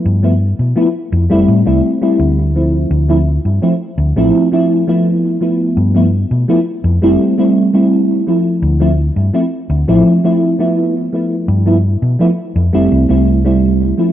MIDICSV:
0, 0, Header, 1, 3, 480
1, 0, Start_track
1, 0, Tempo, 714286
1, 1718, Time_signature, 4, 2, 24, 8
1, 9491, End_track
2, 0, Start_track
2, 0, Title_t, "FM electric piano"
2, 0, Program_c, 0, 5
2, 0, Note_on_c, 0, 53, 76
2, 0, Note_on_c, 0, 57, 71
2, 0, Note_on_c, 0, 59, 71
2, 0, Note_on_c, 0, 64, 83
2, 129, Note_off_c, 0, 53, 0
2, 130, Note_off_c, 0, 57, 0
2, 132, Note_off_c, 0, 59, 0
2, 133, Note_off_c, 0, 64, 0
2, 153, Note_on_c, 0, 53, 87
2, 156, Note_on_c, 0, 57, 80
2, 160, Note_on_c, 0, 59, 83
2, 163, Note_on_c, 0, 64, 99
2, 218, Note_off_c, 0, 53, 0
2, 220, Note_off_c, 0, 57, 0
2, 221, Note_off_c, 0, 59, 0
2, 223, Note_off_c, 0, 64, 0
2, 509, Note_on_c, 0, 53, 96
2, 510, Note_on_c, 0, 57, 89
2, 514, Note_on_c, 0, 59, 88
2, 518, Note_on_c, 0, 64, 100
2, 577, Note_off_c, 0, 53, 0
2, 578, Note_off_c, 0, 57, 0
2, 580, Note_off_c, 0, 59, 0
2, 582, Note_off_c, 0, 64, 0
2, 872, Note_on_c, 0, 55, 102
2, 876, Note_on_c, 0, 57, 90
2, 878, Note_on_c, 0, 60, 89
2, 882, Note_on_c, 0, 64, 113
2, 1087, Note_off_c, 0, 55, 0
2, 1089, Note_off_c, 0, 57, 0
2, 1090, Note_off_c, 0, 60, 0
2, 1092, Note_off_c, 0, 64, 0
2, 1112, Note_on_c, 0, 55, 89
2, 1115, Note_on_c, 0, 57, 83
2, 1119, Note_on_c, 0, 60, 84
2, 1122, Note_on_c, 0, 64, 98
2, 1327, Note_off_c, 0, 55, 0
2, 1328, Note_off_c, 0, 57, 0
2, 1330, Note_off_c, 0, 60, 0
2, 1332, Note_off_c, 0, 64, 0
2, 1354, Note_on_c, 0, 55, 88
2, 1356, Note_on_c, 0, 57, 82
2, 1360, Note_on_c, 0, 60, 80
2, 1364, Note_on_c, 0, 64, 99
2, 1687, Note_off_c, 0, 55, 0
2, 1688, Note_off_c, 0, 57, 0
2, 1689, Note_off_c, 0, 60, 0
2, 1691, Note_off_c, 0, 64, 0
2, 1715, Note_on_c, 0, 53, 73
2, 1720, Note_on_c, 0, 57, 68
2, 1722, Note_on_c, 0, 60, 68
2, 1726, Note_on_c, 0, 64, 79
2, 2049, Note_off_c, 0, 53, 0
2, 2052, Note_off_c, 0, 57, 0
2, 2053, Note_off_c, 0, 60, 0
2, 2055, Note_off_c, 0, 64, 0
2, 2073, Note_on_c, 0, 53, 92
2, 2077, Note_on_c, 0, 57, 79
2, 2080, Note_on_c, 0, 60, 79
2, 2083, Note_on_c, 0, 64, 98
2, 2138, Note_off_c, 0, 53, 0
2, 2140, Note_off_c, 0, 57, 0
2, 2142, Note_off_c, 0, 60, 0
2, 2143, Note_off_c, 0, 64, 0
2, 2432, Note_on_c, 0, 53, 96
2, 2435, Note_on_c, 0, 57, 86
2, 2436, Note_on_c, 0, 60, 88
2, 2440, Note_on_c, 0, 64, 102
2, 2499, Note_off_c, 0, 53, 0
2, 2500, Note_off_c, 0, 57, 0
2, 2501, Note_off_c, 0, 60, 0
2, 2503, Note_off_c, 0, 64, 0
2, 2797, Note_on_c, 0, 53, 101
2, 2799, Note_on_c, 0, 57, 93
2, 2803, Note_on_c, 0, 60, 92
2, 2807, Note_on_c, 0, 64, 112
2, 3009, Note_off_c, 0, 53, 0
2, 3010, Note_off_c, 0, 57, 0
2, 3012, Note_off_c, 0, 60, 0
2, 3014, Note_off_c, 0, 64, 0
2, 3035, Note_on_c, 0, 53, 92
2, 3038, Note_on_c, 0, 57, 81
2, 3042, Note_on_c, 0, 60, 82
2, 3046, Note_on_c, 0, 64, 105
2, 3248, Note_off_c, 0, 53, 0
2, 3250, Note_off_c, 0, 57, 0
2, 3252, Note_off_c, 0, 60, 0
2, 3254, Note_off_c, 0, 64, 0
2, 3275, Note_on_c, 0, 53, 91
2, 3278, Note_on_c, 0, 57, 81
2, 3283, Note_on_c, 0, 59, 80
2, 3286, Note_on_c, 0, 64, 97
2, 3607, Note_off_c, 0, 53, 0
2, 3609, Note_off_c, 0, 57, 0
2, 3611, Note_off_c, 0, 59, 0
2, 3613, Note_off_c, 0, 64, 0
2, 3633, Note_on_c, 0, 53, 79
2, 3638, Note_on_c, 0, 57, 70
2, 3641, Note_on_c, 0, 59, 73
2, 3644, Note_on_c, 0, 64, 85
2, 3968, Note_off_c, 0, 53, 0
2, 3971, Note_off_c, 0, 57, 0
2, 3972, Note_off_c, 0, 59, 0
2, 3974, Note_off_c, 0, 64, 0
2, 3995, Note_on_c, 0, 53, 90
2, 3997, Note_on_c, 0, 57, 81
2, 4003, Note_on_c, 0, 59, 80
2, 4007, Note_on_c, 0, 64, 97
2, 4059, Note_off_c, 0, 53, 0
2, 4060, Note_off_c, 0, 57, 0
2, 4063, Note_off_c, 0, 59, 0
2, 4065, Note_off_c, 0, 64, 0
2, 4356, Note_on_c, 0, 53, 98
2, 4360, Note_on_c, 0, 57, 88
2, 4362, Note_on_c, 0, 59, 90
2, 4366, Note_on_c, 0, 64, 106
2, 4420, Note_off_c, 0, 53, 0
2, 4422, Note_off_c, 0, 57, 0
2, 4424, Note_off_c, 0, 59, 0
2, 4425, Note_off_c, 0, 64, 0
2, 4717, Note_on_c, 0, 55, 101
2, 4721, Note_on_c, 0, 57, 96
2, 4723, Note_on_c, 0, 60, 93
2, 4728, Note_on_c, 0, 64, 111
2, 4929, Note_off_c, 0, 55, 0
2, 4931, Note_off_c, 0, 57, 0
2, 4932, Note_off_c, 0, 60, 0
2, 4934, Note_off_c, 0, 64, 0
2, 4957, Note_on_c, 0, 55, 89
2, 4959, Note_on_c, 0, 57, 83
2, 4963, Note_on_c, 0, 60, 82
2, 4968, Note_on_c, 0, 64, 101
2, 5169, Note_off_c, 0, 55, 0
2, 5170, Note_off_c, 0, 57, 0
2, 5172, Note_off_c, 0, 60, 0
2, 5175, Note_off_c, 0, 64, 0
2, 5196, Note_on_c, 0, 55, 85
2, 5201, Note_on_c, 0, 57, 83
2, 5204, Note_on_c, 0, 60, 83
2, 5205, Note_on_c, 0, 64, 95
2, 5528, Note_off_c, 0, 55, 0
2, 5530, Note_off_c, 0, 57, 0
2, 5531, Note_off_c, 0, 60, 0
2, 5532, Note_off_c, 0, 64, 0
2, 5556, Note_on_c, 0, 53, 74
2, 5559, Note_on_c, 0, 57, 71
2, 5563, Note_on_c, 0, 60, 72
2, 5566, Note_on_c, 0, 64, 87
2, 5890, Note_off_c, 0, 53, 0
2, 5891, Note_off_c, 0, 57, 0
2, 5893, Note_off_c, 0, 60, 0
2, 5895, Note_off_c, 0, 64, 0
2, 5915, Note_on_c, 0, 53, 94
2, 5917, Note_on_c, 0, 57, 83
2, 5921, Note_on_c, 0, 60, 81
2, 5924, Note_on_c, 0, 64, 103
2, 5979, Note_off_c, 0, 53, 0
2, 5980, Note_off_c, 0, 57, 0
2, 5982, Note_off_c, 0, 60, 0
2, 5983, Note_off_c, 0, 64, 0
2, 6273, Note_on_c, 0, 53, 97
2, 6276, Note_on_c, 0, 57, 85
2, 6279, Note_on_c, 0, 60, 88
2, 6281, Note_on_c, 0, 64, 107
2, 6339, Note_off_c, 0, 53, 0
2, 6341, Note_off_c, 0, 57, 0
2, 6342, Note_off_c, 0, 60, 0
2, 6343, Note_off_c, 0, 64, 0
2, 6639, Note_on_c, 0, 53, 102
2, 6642, Note_on_c, 0, 57, 95
2, 6644, Note_on_c, 0, 60, 95
2, 6647, Note_on_c, 0, 64, 112
2, 6850, Note_off_c, 0, 53, 0
2, 6852, Note_off_c, 0, 57, 0
2, 6853, Note_off_c, 0, 60, 0
2, 6854, Note_off_c, 0, 64, 0
2, 6881, Note_on_c, 0, 53, 92
2, 6885, Note_on_c, 0, 57, 84
2, 6886, Note_on_c, 0, 60, 81
2, 6889, Note_on_c, 0, 64, 99
2, 7091, Note_off_c, 0, 53, 0
2, 7093, Note_off_c, 0, 57, 0
2, 7094, Note_off_c, 0, 60, 0
2, 7095, Note_off_c, 0, 64, 0
2, 7116, Note_on_c, 0, 53, 88
2, 7119, Note_on_c, 0, 57, 84
2, 7123, Note_on_c, 0, 59, 83
2, 7126, Note_on_c, 0, 64, 99
2, 7448, Note_off_c, 0, 53, 0
2, 7449, Note_off_c, 0, 57, 0
2, 7451, Note_off_c, 0, 59, 0
2, 7453, Note_off_c, 0, 64, 0
2, 7476, Note_on_c, 0, 53, 75
2, 7481, Note_on_c, 0, 57, 72
2, 7484, Note_on_c, 0, 59, 69
2, 7490, Note_on_c, 0, 64, 86
2, 7810, Note_off_c, 0, 53, 0
2, 7812, Note_off_c, 0, 57, 0
2, 7814, Note_off_c, 0, 59, 0
2, 7817, Note_off_c, 0, 64, 0
2, 7835, Note_on_c, 0, 53, 86
2, 7836, Note_on_c, 0, 57, 81
2, 7840, Note_on_c, 0, 59, 85
2, 7845, Note_on_c, 0, 64, 97
2, 7899, Note_off_c, 0, 53, 0
2, 7900, Note_off_c, 0, 57, 0
2, 7902, Note_off_c, 0, 59, 0
2, 7904, Note_off_c, 0, 64, 0
2, 8192, Note_on_c, 0, 53, 99
2, 8199, Note_on_c, 0, 57, 86
2, 8201, Note_on_c, 0, 59, 88
2, 8204, Note_on_c, 0, 64, 104
2, 8259, Note_off_c, 0, 53, 0
2, 8262, Note_off_c, 0, 57, 0
2, 8263, Note_off_c, 0, 59, 0
2, 8265, Note_off_c, 0, 64, 0
2, 8554, Note_on_c, 0, 55, 105
2, 8557, Note_on_c, 0, 57, 92
2, 8561, Note_on_c, 0, 60, 90
2, 8565, Note_on_c, 0, 64, 113
2, 8768, Note_off_c, 0, 55, 0
2, 8769, Note_off_c, 0, 57, 0
2, 8771, Note_off_c, 0, 60, 0
2, 8773, Note_off_c, 0, 64, 0
2, 8794, Note_on_c, 0, 55, 88
2, 8797, Note_on_c, 0, 57, 82
2, 8801, Note_on_c, 0, 60, 83
2, 8804, Note_on_c, 0, 64, 98
2, 9008, Note_off_c, 0, 55, 0
2, 9009, Note_off_c, 0, 57, 0
2, 9011, Note_off_c, 0, 60, 0
2, 9013, Note_off_c, 0, 64, 0
2, 9035, Note_on_c, 0, 55, 91
2, 9037, Note_on_c, 0, 57, 78
2, 9042, Note_on_c, 0, 60, 81
2, 9045, Note_on_c, 0, 64, 92
2, 9367, Note_off_c, 0, 55, 0
2, 9368, Note_off_c, 0, 57, 0
2, 9371, Note_off_c, 0, 60, 0
2, 9372, Note_off_c, 0, 64, 0
2, 9392, Note_on_c, 0, 53, 77
2, 9395, Note_on_c, 0, 57, 70
2, 9399, Note_on_c, 0, 60, 70
2, 9402, Note_on_c, 0, 64, 82
2, 9491, Note_off_c, 0, 53, 0
2, 9491, Note_off_c, 0, 57, 0
2, 9491, Note_off_c, 0, 60, 0
2, 9491, Note_off_c, 0, 64, 0
2, 9491, End_track
3, 0, Start_track
3, 0, Title_t, "Fingered electric bass"
3, 0, Program_c, 1, 33
3, 37, Note_on_c, 1, 43, 92
3, 349, Note_off_c, 1, 43, 0
3, 397, Note_on_c, 1, 47, 79
3, 486, Note_off_c, 1, 47, 0
3, 755, Note_on_c, 1, 41, 102
3, 847, Note_off_c, 1, 41, 0
3, 881, Note_on_c, 1, 29, 84
3, 968, Note_off_c, 1, 29, 0
3, 996, Note_on_c, 1, 45, 94
3, 1088, Note_off_c, 1, 45, 0
3, 1122, Note_on_c, 1, 36, 84
3, 1209, Note_off_c, 1, 36, 0
3, 1474, Note_on_c, 1, 38, 95
3, 1908, Note_off_c, 1, 38, 0
3, 1953, Note_on_c, 1, 38, 101
3, 2267, Note_off_c, 1, 38, 0
3, 2318, Note_on_c, 1, 43, 75
3, 2406, Note_off_c, 1, 43, 0
3, 2672, Note_on_c, 1, 38, 99
3, 2766, Note_off_c, 1, 38, 0
3, 2796, Note_on_c, 1, 33, 84
3, 2886, Note_off_c, 1, 33, 0
3, 3876, Note_on_c, 1, 43, 95
3, 4189, Note_off_c, 1, 43, 0
3, 4240, Note_on_c, 1, 47, 81
3, 4328, Note_off_c, 1, 47, 0
3, 4596, Note_on_c, 1, 41, 99
3, 4688, Note_off_c, 1, 41, 0
3, 4718, Note_on_c, 1, 29, 86
3, 4807, Note_off_c, 1, 29, 0
3, 5795, Note_on_c, 1, 38, 101
3, 6108, Note_off_c, 1, 38, 0
3, 6157, Note_on_c, 1, 43, 81
3, 6246, Note_off_c, 1, 43, 0
3, 6516, Note_on_c, 1, 38, 98
3, 6608, Note_off_c, 1, 38, 0
3, 6639, Note_on_c, 1, 33, 82
3, 6727, Note_off_c, 1, 33, 0
3, 7716, Note_on_c, 1, 43, 100
3, 8029, Note_off_c, 1, 43, 0
3, 8078, Note_on_c, 1, 47, 77
3, 8167, Note_off_c, 1, 47, 0
3, 8438, Note_on_c, 1, 41, 99
3, 8528, Note_off_c, 1, 41, 0
3, 8560, Note_on_c, 1, 29, 81
3, 8648, Note_off_c, 1, 29, 0
3, 8679, Note_on_c, 1, 36, 89
3, 8769, Note_off_c, 1, 36, 0
3, 8799, Note_on_c, 1, 36, 85
3, 9349, Note_off_c, 1, 36, 0
3, 9491, End_track
0, 0, End_of_file